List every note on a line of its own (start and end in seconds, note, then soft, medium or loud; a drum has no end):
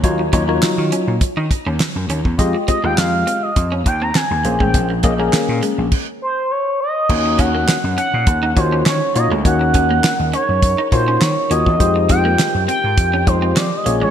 0.03 0.28 D#2 loud
0.03 0.21 F#3 medium
0.03 0.21 D#4 medium
0.03 0.21 F4 medium
0.03 0.21 C#5 loud
0.03 kick loud
0.03 closed hi-hat medium
0.19 muted clean electric guitar stroke soft
0.33 0.58 D#2 loud
0.33 0.42 F#3 medium
0.33 0.42 C#4 medium
0.33 0.42 D#4 medium
0.33 0.42 F4 medium
0.33 0.42 C#5 loud
0.33 kick medium
0.33 closed hi-hat medium
0.48 1.14 F#3 medium
0.48 0.57 A#3 medium
0.48 1.14 D#4 medium
0.48 1.14 F4 medium
0.48 1.14 C#5 loud
0.62 muted slap bass stroke soft
0.62 snare loud
0.62 clap medium
0.62 closed hi-hat medium
0.78 0.90 D#3 medium
0.92 1.01 C#4 medium
0.92 closed hi-hat medium
1.08 1.19 A#2 medium
1.21 muted slap bass stroke soft
1.21 kick loud
1.21 closed hi-hat medium
1.37 1.49 D#3 loud
1.37 1.45 D#4 medium
1.51 muted clean electric guitar stroke soft
1.51 kick medium
1.51 closed hi-hat medium
1.66 1.78 D#2 medium
1.66 1.74 C#4 medium
1.80 snare loud
1.80 clap medium
1.80 closed hi-hat medium
1.96 2.07 F#2 medium
2.09 2.23 D#2 medium
2.09 2.19 C#4 medium
2.09 closed hi-hat medium
2.25 2.37 E2 medium
2.25 kick medium
2.38 2.52 F2 loud
2.38 2.56 G#3 medium
2.38 2.56 F4 medium
2.38 2.56 G4 medium
2.38 2.56 D#5 loud
2.38 kick loud
2.38 closed hi-hat medium
2.54 muted clean electric guitar stroke soft
2.68 2.77 G#3 medium
2.68 2.77 C4 medium
2.68 2.77 F4 medium
2.68 2.77 G4 medium
2.68 2.83 D#5 medium
2.68 2.77 D#5 medium
2.68 kick medium
2.68 closed hi-hat medium
2.84 2.95 D#2 medium
2.84 3.49 G#3 medium
2.84 2.92 A#3 medium
2.84 3.50 F4 medium
2.84 3.50 G4 medium
2.84 3.50 F5 medium
2.84 2.97 G5 medium
2.98 3.22 F2 medium
2.98 3.44 F5 medium
2.98 snare loud
2.98 clap medium
2.98 closed hi-hat medium
3.27 3.36 C4 medium
3.27 closed hi-hat medium
3.43 3.72 D#5 medium
3.56 3.81 F2 loud
3.56 kick loud
3.56 closed hi-hat medium
3.72 3.80 C#4 medium
3.86 4.11 D#2 medium
3.86 4.03 G5 loud
3.86 muted clean electric guitar stroke soft
3.86 kick medium
3.86 closed hi-hat medium
4.02 4.10 C4 medium
4.02 4.17 A#5 loud
4.15 4.24 C4 medium
4.15 4.60 G#5 loud
4.15 snare loud
4.15 clap medium
4.15 closed hi-hat medium
4.31 4.42 D#2 medium
4.44 4.58 A#1 medium
4.44 4.92 A#3 medium
4.44 4.93 C#4 medium
4.44 4.93 G#4 medium
4.44 4.93 C5 medium
4.44 muted clean electric guitar stroke soft
4.44 closed hi-hat medium
4.60 4.72 A1 medium
4.60 4.68 G#3 medium
4.60 4.88 G5 medium
4.60 kick medium
4.74 4.99 A#1 loud
4.74 kick loud
4.74 closed hi-hat medium
4.90 muted clean electric guitar stroke soft
5.03 5.28 A#1 loud
5.03 5.12 A#3 medium
5.03 5.13 A#3 medium
5.03 5.12 C#4 medium
5.03 5.13 G#4 medium
5.03 5.13 D#5 medium
5.03 kick medium
5.03 closed hi-hat medium
5.19 5.85 A#3 medium
5.19 5.27 A#3 medium
5.19 5.85 C#4 medium
5.19 5.85 G#4 medium
5.19 5.85 A#4 medium
5.33 muted slap bass stroke soft
5.33 snare loud
5.33 clap medium
5.33 closed hi-hat medium
5.49 5.60 A#2 medium
5.63 5.72 G#3 medium
5.63 closed hi-hat medium
5.78 5.90 A#1 medium
5.92 kick loud
5.92 crash medium
6.22 6.53 C5 medium
6.51 6.80 C#5 medium
6.80 7.41 D#5 loud
7.09 7.34 D#2 loud
7.09 11.76 C#3 medium
7.09 11.77 F#3 medium
7.09 7.76 A#3 medium
7.09 7.76 C#4 medium
7.09 9.43 C#4 medium
7.09 7.76 D#4 medium
7.09 11.76 D#4 medium
7.09 7.76 F#4 medium
7.09 7.76 C#5 medium
7.09 kick loud
7.09 crash loud
7.26 muted clean electric guitar stroke soft
7.39 7.64 D#2 medium
7.39 7.48 C#4 medium
7.39 7.97 F#5 loud
7.39 kick medium
7.39 closed hi-hat medium
7.55 7.62 A#3 medium
7.68 snare loud
7.68 clap medium
7.68 closed hi-hat medium
7.84 7.96 F#2 medium
7.98 8.07 C#4 medium
7.98 8.53 F#5 loud
7.98 closed hi-hat medium
8.14 8.25 A#2 medium
8.27 8.52 D#2 loud
8.27 kick loud
8.27 closed hi-hat medium
8.43 8.51 D#4 medium
8.56 8.81 D#2 loud
8.56 8.90 A#3 medium
8.56 8.90 D#4 medium
8.56 8.90 F4 medium
8.56 8.90 F#4 medium
8.56 8.84 C5 medium
8.56 8.90 C#5 medium
8.56 muted clean electric guitar stroke soft
8.56 kick loud
8.56 closed hi-hat medium
8.72 8.80 C#4 medium
8.86 8.99 D#3 medium
8.86 8.95 C#4 medium
8.86 9.14 C#5 loud
8.86 snare loud
8.86 clap medium
8.86 closed hi-hat medium
9.15 9.29 A#2 medium
9.15 9.33 A#3 medium
9.15 9.33 D#4 medium
9.15 9.33 F4 medium
9.15 9.33 F#4 medium
9.15 9.33 C#5 medium
9.15 9.29 D#5 medium
9.15 muted clean electric guitar stroke soft
9.15 closed hi-hat medium
9.31 9.43 D2 medium
9.31 9.39 G#3 medium
9.45 9.70 D#2 loud
9.45 10.11 A#3 medium
9.45 10.11 C#4 medium
9.45 10.11 D#4 medium
9.45 10.11 F#4 medium
9.45 11.78 A#4 medium
9.45 10.12 C#5 medium
9.45 10.29 F#5 loud
9.45 kick loud
9.45 closed hi-hat medium
9.61 muted clean electric guitar stroke soft
9.74 9.99 D#2 loud
9.74 9.84 C#4 medium
9.74 kick medium
9.74 closed hi-hat medium
9.91 9.98 A#3 medium
10.04 snare loud
10.04 clap medium
10.04 closed hi-hat medium
10.20 10.31 D#2 medium
10.33 10.42 C#4 medium
10.33 10.88 C#5 loud
10.33 closed hi-hat medium
10.49 10.73 F#2 medium
10.62 kick loud
10.62 closed hi-hat medium
10.78 10.86 D#4 medium
10.92 11.17 A#2 medium
10.92 11.25 A#3 medium
10.92 11.25 D#4 medium
10.92 11.25 F4 medium
10.92 11.25 F#4 medium
10.92 11.23 C5 loud
10.92 11.25 C#5 medium
10.92 muted clean electric guitar stroke soft
10.92 kick loud
10.92 closed hi-hat medium
11.08 11.16 C#4 medium
11.21 11.34 D#3 loud
11.21 11.52 C#5 loud
11.21 snare loud
11.21 clap medium
11.21 closed hi-hat medium
11.50 11.64 D#2 loud
11.50 11.68 A#3 medium
11.50 11.60 C#4 medium
11.50 11.68 D#4 medium
11.50 11.68 F4 medium
11.50 11.68 F#4 medium
11.50 11.68 C#5 medium
11.50 12.09 D#5 loud
11.50 closed hi-hat medium
11.66 11.78 E2 medium
11.66 kick medium
11.80 12.05 F2 loud
11.80 13.84 D#3 medium
11.80 12.46 G#3 medium
11.80 14.11 G#3 medium
11.80 12.46 D#4 medium
11.80 12.46 F4 medium
11.80 13.84 F4 medium
11.80 12.47 G4 medium
11.80 13.84 G4 medium
11.80 12.47 C5 medium
11.80 kick loud
11.80 closed hi-hat medium
11.96 muted clean electric guitar stroke soft
12.09 12.34 F2 loud
12.09 12.18 C4 medium
12.09 12.64 G5 loud
12.09 kick medium
12.09 closed hi-hat medium
12.25 12.33 A#3 medium
12.39 snare loud
12.39 clap medium
12.39 closed hi-hat medium
12.55 12.66 F#2 medium
12.68 12.77 C4 medium
12.68 13.29 G5 loud
12.68 closed hi-hat medium
12.84 12.96 G#2 medium
12.98 13.22 F2 loud
12.98 kick loud
12.98 closed hi-hat medium
13.14 13.21 C#4 medium
13.27 13.52 F2 loud
13.27 13.60 G#3 medium
13.27 13.60 D#4 medium
13.27 13.60 F4 medium
13.27 13.60 G4 medium
13.27 13.58 C5 loud
13.27 13.61 C5 medium
13.27 muted clean electric guitar stroke soft
13.27 kick loud
13.27 closed hi-hat medium
13.42 13.50 C4 medium
13.56 13.70 F3 loud
13.56 13.65 C4 medium
13.56 13.78 D5 loud
13.56 snare loud
13.56 clap medium
13.56 closed hi-hat medium
13.76 13.96 D#5 loud
13.85 13.99 A#1 loud
13.85 14.11 C#3 medium
13.85 14.11 A#3 medium
13.85 14.11 C#4 medium
13.85 14.11 C#4 loud
13.85 14.11 F4 medium
13.85 14.11 G#4 medium
13.85 14.11 C#5 medium
13.85 muted clean electric guitar stroke soft
13.85 closed hi-hat medium
14.02 14.11 A1 loud
14.02 14.09 G#3 medium
14.02 14.11 C#5 loud